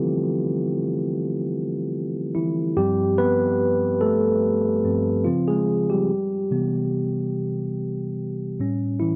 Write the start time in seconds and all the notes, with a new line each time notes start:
Already playing: D3 E3 F3 G3 C4 E4 F4 G4
2.35 E3 E4
2.77 G2 F3 G3 C4 G4
3.18 B3 B4
4.01 A3 A4
4.85 G2 F3 C4
5.25 C#3 F3 C4 F4
5.48 G#3 G#4
5.90 G3 G4
6.51 C3 E3 B3
8.60 A2 G3 C#4
9.00 E3 E4